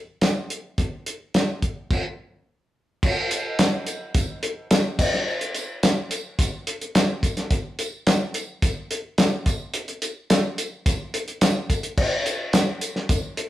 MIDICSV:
0, 0, Header, 1, 2, 480
1, 0, Start_track
1, 0, Tempo, 559701
1, 668, Time_signature, 4, 2, 24, 8
1, 11572, End_track
2, 0, Start_track
2, 0, Title_t, "Drums"
2, 184, Note_on_c, 9, 42, 81
2, 188, Note_on_c, 9, 38, 106
2, 195, Note_on_c, 9, 54, 86
2, 270, Note_off_c, 9, 42, 0
2, 273, Note_off_c, 9, 38, 0
2, 281, Note_off_c, 9, 54, 0
2, 431, Note_on_c, 9, 42, 62
2, 517, Note_off_c, 9, 42, 0
2, 669, Note_on_c, 9, 36, 97
2, 669, Note_on_c, 9, 42, 83
2, 754, Note_off_c, 9, 42, 0
2, 755, Note_off_c, 9, 36, 0
2, 912, Note_on_c, 9, 42, 63
2, 998, Note_off_c, 9, 42, 0
2, 1153, Note_on_c, 9, 42, 80
2, 1156, Note_on_c, 9, 38, 105
2, 1157, Note_on_c, 9, 54, 85
2, 1238, Note_off_c, 9, 42, 0
2, 1242, Note_off_c, 9, 38, 0
2, 1243, Note_off_c, 9, 54, 0
2, 1393, Note_on_c, 9, 36, 80
2, 1394, Note_on_c, 9, 42, 63
2, 1479, Note_off_c, 9, 36, 0
2, 1479, Note_off_c, 9, 42, 0
2, 1634, Note_on_c, 9, 36, 109
2, 1635, Note_on_c, 9, 49, 90
2, 1720, Note_off_c, 9, 36, 0
2, 1721, Note_off_c, 9, 49, 0
2, 2598, Note_on_c, 9, 36, 109
2, 2599, Note_on_c, 9, 49, 102
2, 2606, Note_on_c, 9, 54, 30
2, 2683, Note_off_c, 9, 36, 0
2, 2685, Note_off_c, 9, 49, 0
2, 2691, Note_off_c, 9, 54, 0
2, 2837, Note_on_c, 9, 54, 73
2, 2838, Note_on_c, 9, 42, 77
2, 2922, Note_off_c, 9, 54, 0
2, 2924, Note_off_c, 9, 42, 0
2, 3077, Note_on_c, 9, 42, 94
2, 3079, Note_on_c, 9, 54, 96
2, 3081, Note_on_c, 9, 38, 104
2, 3163, Note_off_c, 9, 42, 0
2, 3165, Note_off_c, 9, 54, 0
2, 3166, Note_off_c, 9, 38, 0
2, 3315, Note_on_c, 9, 42, 65
2, 3326, Note_on_c, 9, 54, 77
2, 3400, Note_off_c, 9, 42, 0
2, 3412, Note_off_c, 9, 54, 0
2, 3555, Note_on_c, 9, 42, 101
2, 3556, Note_on_c, 9, 36, 121
2, 3566, Note_on_c, 9, 54, 78
2, 3641, Note_off_c, 9, 42, 0
2, 3642, Note_off_c, 9, 36, 0
2, 3652, Note_off_c, 9, 54, 0
2, 3797, Note_on_c, 9, 42, 79
2, 3883, Note_off_c, 9, 42, 0
2, 4036, Note_on_c, 9, 42, 101
2, 4040, Note_on_c, 9, 38, 122
2, 4040, Note_on_c, 9, 54, 102
2, 4122, Note_off_c, 9, 42, 0
2, 4125, Note_off_c, 9, 38, 0
2, 4125, Note_off_c, 9, 54, 0
2, 4277, Note_on_c, 9, 57, 102
2, 4278, Note_on_c, 9, 36, 110
2, 4282, Note_on_c, 9, 54, 81
2, 4363, Note_off_c, 9, 57, 0
2, 4364, Note_off_c, 9, 36, 0
2, 4368, Note_off_c, 9, 54, 0
2, 4405, Note_on_c, 9, 38, 32
2, 4491, Note_off_c, 9, 38, 0
2, 4528, Note_on_c, 9, 54, 32
2, 4614, Note_off_c, 9, 54, 0
2, 4640, Note_on_c, 9, 42, 53
2, 4726, Note_off_c, 9, 42, 0
2, 4756, Note_on_c, 9, 42, 73
2, 4768, Note_on_c, 9, 54, 78
2, 4841, Note_off_c, 9, 42, 0
2, 4854, Note_off_c, 9, 54, 0
2, 5000, Note_on_c, 9, 42, 104
2, 5001, Note_on_c, 9, 54, 98
2, 5003, Note_on_c, 9, 38, 107
2, 5086, Note_off_c, 9, 42, 0
2, 5087, Note_off_c, 9, 54, 0
2, 5089, Note_off_c, 9, 38, 0
2, 5238, Note_on_c, 9, 42, 79
2, 5249, Note_on_c, 9, 54, 66
2, 5324, Note_off_c, 9, 42, 0
2, 5334, Note_off_c, 9, 54, 0
2, 5478, Note_on_c, 9, 36, 127
2, 5480, Note_on_c, 9, 42, 119
2, 5485, Note_on_c, 9, 54, 82
2, 5564, Note_off_c, 9, 36, 0
2, 5565, Note_off_c, 9, 42, 0
2, 5570, Note_off_c, 9, 54, 0
2, 5720, Note_on_c, 9, 42, 82
2, 5806, Note_off_c, 9, 42, 0
2, 5844, Note_on_c, 9, 42, 45
2, 5930, Note_off_c, 9, 42, 0
2, 5961, Note_on_c, 9, 42, 99
2, 5965, Note_on_c, 9, 38, 119
2, 5967, Note_on_c, 9, 54, 97
2, 6047, Note_off_c, 9, 42, 0
2, 6050, Note_off_c, 9, 38, 0
2, 6053, Note_off_c, 9, 54, 0
2, 6200, Note_on_c, 9, 36, 81
2, 6205, Note_on_c, 9, 42, 78
2, 6209, Note_on_c, 9, 54, 71
2, 6286, Note_off_c, 9, 36, 0
2, 6291, Note_off_c, 9, 42, 0
2, 6295, Note_off_c, 9, 54, 0
2, 6320, Note_on_c, 9, 42, 45
2, 6323, Note_on_c, 9, 38, 34
2, 6405, Note_off_c, 9, 42, 0
2, 6409, Note_off_c, 9, 38, 0
2, 6437, Note_on_c, 9, 42, 92
2, 6438, Note_on_c, 9, 36, 104
2, 6455, Note_on_c, 9, 54, 28
2, 6523, Note_off_c, 9, 42, 0
2, 6524, Note_off_c, 9, 36, 0
2, 6541, Note_off_c, 9, 54, 0
2, 6679, Note_on_c, 9, 42, 72
2, 6697, Note_on_c, 9, 54, 74
2, 6764, Note_off_c, 9, 42, 0
2, 6783, Note_off_c, 9, 54, 0
2, 6918, Note_on_c, 9, 42, 88
2, 6922, Note_on_c, 9, 38, 112
2, 6929, Note_on_c, 9, 54, 90
2, 7004, Note_off_c, 9, 42, 0
2, 7007, Note_off_c, 9, 38, 0
2, 7015, Note_off_c, 9, 54, 0
2, 7155, Note_on_c, 9, 42, 74
2, 7164, Note_on_c, 9, 54, 64
2, 7240, Note_off_c, 9, 42, 0
2, 7250, Note_off_c, 9, 54, 0
2, 7396, Note_on_c, 9, 36, 119
2, 7396, Note_on_c, 9, 42, 105
2, 7408, Note_on_c, 9, 54, 73
2, 7482, Note_off_c, 9, 36, 0
2, 7482, Note_off_c, 9, 42, 0
2, 7494, Note_off_c, 9, 54, 0
2, 7638, Note_on_c, 9, 42, 82
2, 7724, Note_off_c, 9, 42, 0
2, 7872, Note_on_c, 9, 42, 95
2, 7876, Note_on_c, 9, 38, 116
2, 7882, Note_on_c, 9, 54, 95
2, 7958, Note_off_c, 9, 42, 0
2, 7961, Note_off_c, 9, 38, 0
2, 7968, Note_off_c, 9, 54, 0
2, 8112, Note_on_c, 9, 42, 78
2, 8114, Note_on_c, 9, 36, 100
2, 8121, Note_on_c, 9, 54, 70
2, 8198, Note_off_c, 9, 42, 0
2, 8200, Note_off_c, 9, 36, 0
2, 8207, Note_off_c, 9, 54, 0
2, 8349, Note_on_c, 9, 42, 93
2, 8357, Note_on_c, 9, 54, 26
2, 8435, Note_off_c, 9, 42, 0
2, 8443, Note_off_c, 9, 54, 0
2, 8473, Note_on_c, 9, 42, 44
2, 8559, Note_off_c, 9, 42, 0
2, 8592, Note_on_c, 9, 42, 79
2, 8594, Note_on_c, 9, 54, 69
2, 8678, Note_off_c, 9, 42, 0
2, 8680, Note_off_c, 9, 54, 0
2, 8834, Note_on_c, 9, 42, 108
2, 8834, Note_on_c, 9, 54, 94
2, 8837, Note_on_c, 9, 38, 115
2, 8919, Note_off_c, 9, 42, 0
2, 8920, Note_off_c, 9, 54, 0
2, 8923, Note_off_c, 9, 38, 0
2, 9075, Note_on_c, 9, 42, 79
2, 9076, Note_on_c, 9, 54, 73
2, 9160, Note_off_c, 9, 42, 0
2, 9162, Note_off_c, 9, 54, 0
2, 9313, Note_on_c, 9, 36, 127
2, 9314, Note_on_c, 9, 42, 120
2, 9318, Note_on_c, 9, 54, 85
2, 9399, Note_off_c, 9, 36, 0
2, 9400, Note_off_c, 9, 42, 0
2, 9403, Note_off_c, 9, 54, 0
2, 9553, Note_on_c, 9, 42, 85
2, 9557, Note_on_c, 9, 54, 28
2, 9639, Note_off_c, 9, 42, 0
2, 9643, Note_off_c, 9, 54, 0
2, 9671, Note_on_c, 9, 42, 48
2, 9756, Note_off_c, 9, 42, 0
2, 9788, Note_on_c, 9, 42, 112
2, 9788, Note_on_c, 9, 54, 103
2, 9792, Note_on_c, 9, 38, 118
2, 9874, Note_off_c, 9, 42, 0
2, 9874, Note_off_c, 9, 54, 0
2, 9877, Note_off_c, 9, 38, 0
2, 10031, Note_on_c, 9, 36, 91
2, 10031, Note_on_c, 9, 42, 78
2, 10035, Note_on_c, 9, 54, 73
2, 10116, Note_off_c, 9, 36, 0
2, 10117, Note_off_c, 9, 42, 0
2, 10121, Note_off_c, 9, 54, 0
2, 10148, Note_on_c, 9, 42, 51
2, 10234, Note_off_c, 9, 42, 0
2, 10270, Note_on_c, 9, 36, 104
2, 10270, Note_on_c, 9, 57, 97
2, 10280, Note_on_c, 9, 54, 32
2, 10355, Note_off_c, 9, 57, 0
2, 10356, Note_off_c, 9, 36, 0
2, 10366, Note_off_c, 9, 54, 0
2, 10513, Note_on_c, 9, 42, 79
2, 10519, Note_on_c, 9, 54, 91
2, 10598, Note_off_c, 9, 42, 0
2, 10604, Note_off_c, 9, 54, 0
2, 10748, Note_on_c, 9, 42, 97
2, 10751, Note_on_c, 9, 38, 112
2, 10757, Note_on_c, 9, 54, 111
2, 10833, Note_off_c, 9, 42, 0
2, 10837, Note_off_c, 9, 38, 0
2, 10843, Note_off_c, 9, 54, 0
2, 10989, Note_on_c, 9, 42, 65
2, 10998, Note_on_c, 9, 54, 75
2, 11075, Note_off_c, 9, 42, 0
2, 11083, Note_off_c, 9, 54, 0
2, 11113, Note_on_c, 9, 38, 31
2, 11199, Note_off_c, 9, 38, 0
2, 11227, Note_on_c, 9, 42, 95
2, 11229, Note_on_c, 9, 36, 121
2, 11237, Note_on_c, 9, 54, 87
2, 11313, Note_off_c, 9, 42, 0
2, 11315, Note_off_c, 9, 36, 0
2, 11323, Note_off_c, 9, 54, 0
2, 11469, Note_on_c, 9, 42, 74
2, 11555, Note_off_c, 9, 42, 0
2, 11572, End_track
0, 0, End_of_file